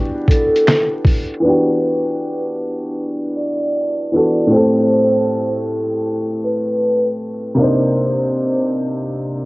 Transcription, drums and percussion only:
0.28 kick, closed hi-hat
0.56 closed hi-hat
0.67 finger snap, snare, closed hi-hat
1.05 kick, open hi-hat
1.34 closed hi-hat

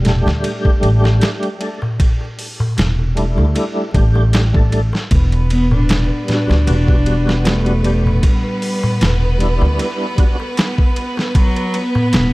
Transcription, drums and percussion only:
0.05 snare, ride, darbuka dum
0.27 snare, darbuka tek
0.43 ride, darbuka tek
0.65 kick, darbuka tek
0.83 ride
1.04 snare, darbuka tek
1.21 snare, ride, darbuka tek
1.43 ride, darbuka tek
1.61 ride
1.82 darbuka tek, darbuka dum
2.00 kick, ride, darbuka tek
2.21 darbuka tek
2.39 open hi-hat
2.60 darbuka tek, darbuka dum
2.77 snare, ride, darbuka tek
2.99 darbuka tek
3.17 ride
3.38 darbuka tek
3.55 ride, darbuka tek
3.77 darbuka tek
3.94 kick, ride
4.15 darbuka tek
4.33 snare, ride, darbuka tek
4.55 kick, darbuka tek
4.72 ride
4.93 snare, darbuka tek
5.11 kick, ride, darbuka tek
5.32 ride, darbuka tek
5.50 ride
5.71 darbuka tek, darbuka dum
5.89 snare, ride, darbuka tek
6.11 darbuka tek
6.28 snare, ride, darbuka dum
6.50 snare, darbuka tek
6.67 ride, darbuka tek
6.88 kick, darbuka tek
7.06 ride
7.27 snare, darbuka tek
7.45 snare, ride, darbuka tek
7.66 ride, darbuka tek
7.84 ride
8.06 darbuka tek, darbuka dum
8.23 kick, ride, darbuka tek
8.45 darbuka tek
8.62 open hi-hat
8.83 darbuka tek, darbuka dum
9.01 snare, ride, darbuka tek
9.23 darbuka tek
9.40 ride
9.62 darbuka tek
9.79 ride, darbuka tek
10.01 darbuka tek
10.18 kick, ride
10.40 darbuka tek
10.57 snare, ride, darbuka tek
10.78 kick, darbuka tek
10.96 ride
11.17 snare, darbuka tek
11.35 kick, ride, darbuka tek
11.56 ride, darbuka tek
11.74 ride
11.95 darbuka tek, darbuka dum
12.13 snare, ride, darbuka tek

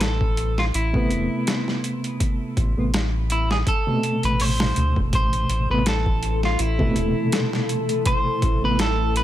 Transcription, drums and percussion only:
0.01 snare, closed hi-hat
0.21 kick
0.37 closed hi-hat
0.58 snare
0.74 closed hi-hat
0.94 kick
1.11 closed hi-hat
1.47 snare, closed hi-hat
1.68 snare
1.84 closed hi-hat
2.04 closed hi-hat
2.20 kick, closed hi-hat
2.57 kick, closed hi-hat
2.94 snare, closed hi-hat
3.30 closed hi-hat
3.51 snare
3.67 kick, closed hi-hat
4.03 closed hi-hat
4.23 closed hi-hat
4.40 open hi-hat
4.60 snare
4.76 closed hi-hat
4.96 kick
5.13 kick, closed hi-hat
5.33 closed hi-hat
5.50 closed hi-hat
5.86 snare, closed hi-hat
6.06 kick
6.23 closed hi-hat
6.43 snare
6.59 closed hi-hat
6.79 kick
6.96 closed hi-hat
7.32 snare, closed hi-hat
7.53 snare
7.69 closed hi-hat
7.89 closed hi-hat
8.06 kick, closed hi-hat
8.42 kick, closed hi-hat
8.79 snare, closed hi-hat
9.16 closed hi-hat

